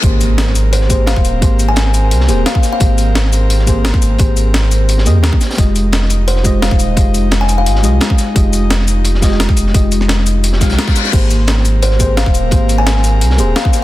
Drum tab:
CC |--------------------------------|--------------------------------|--------------------------------|--------------------------------|
HH |x---x---x---x---x---x---x---x---|x---x---x---x---x---x---x---x---|x---x---x---x---x---x---x---x---|x---x---x---x---x---x---x---x-xx|
SH |----x-------x-------x-------x---|----x-------x-------x-------x---|----x-------x-------x-------x---|----x-------x---x---x-------x---|
SD |--------o-o-------o-----o-o-----|--------o-o-------o-----o---o---|--------o-o-------o-----o-o-----|--------o-o-------o-----o---o-oo|
BD |o-------------------o-----o-----|o-------------------------o-----|o-------------------o-----o-----|o-------------------------o-----|

CC |--------------------------------|--------------------------------|--------------------------------|--------------------------------|
HH |x---x---x---x---x---x---x---x---|x---x---x---x---x---x---x---x---|x---x---x---x---x---x---x---x---|x---x---x---x---x---x-x-x-x-x-x-|
SH |----x-------x-------x-------x---|----x-------x-------x-------x---|----x-------x-------x-------x---|----x-------x---x---x-------x-x-|
SD |--------o-o-------o-----o-o-----|--------o-o-------o-----o---o---|--------o-o-------o-o-o-o-o---o-|------o-o-o-------o-o-o-o-o-o-o-|
BD |o-------------------o-----o-----|o-------------------------o-----|o-------------------o-----o-----|o-------------------o-----o-----|

CC |x-------------------------------|--------------------------------|
HH |x---x---x---x---x---x---x---x---|x---x---x---x---x---x---x---x---|
SH |----x-------x-------x-------x---|----x-------x-------x-------x---|
SD |--------o-o-------o-----o-o-----|--------o-o-------o-----o---o---|
BD |o-------------------o-----o-----|o-------------------------o-----|